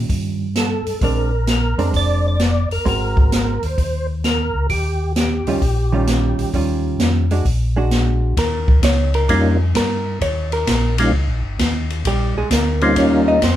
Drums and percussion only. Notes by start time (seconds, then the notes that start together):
0.09 kick, open hi-hat
0.56 snare, closed hi-hat
0.86 open hi-hat
1.01 kick, open hi-hat
1.47 snare, closed hi-hat
1.79 open hi-hat
1.94 kick, open hi-hat
2.40 snare, closed hi-hat
2.71 open hi-hat
2.86 kick, open hi-hat
3.17 kick
3.32 snare, closed hi-hat
3.63 open hi-hat
3.78 kick, open hi-hat
4.24 snare, closed hi-hat
4.70 kick, open hi-hat
5.16 snare, closed hi-hat
5.47 open hi-hat
5.62 kick, open hi-hat
6.07 snare, closed hi-hat
6.39 open hi-hat
6.54 kick, open hi-hat
7.00 snare, closed hi-hat
7.31 open hi-hat
7.45 kick, open hi-hat
7.91 snare, closed hi-hat
8.37 kick, snare, ride
8.68 kick
8.83 kick, snare, hi-hat pedal, ride
9.14 ride
9.29 kick, ride
9.75 kick, snare, hi-hat pedal, ride
10.21 kick, ride
10.52 ride
10.67 kick, snare, hi-hat pedal, ride
10.98 ride
11.13 kick
11.59 kick, snare, hi-hat pedal, ride
11.90 ride
12.05 kick, ride
12.51 kick, snare, hi-hat pedal, ride
12.81 ride
12.96 kick, ride
13.42 kick, snare, hi-hat pedal, ride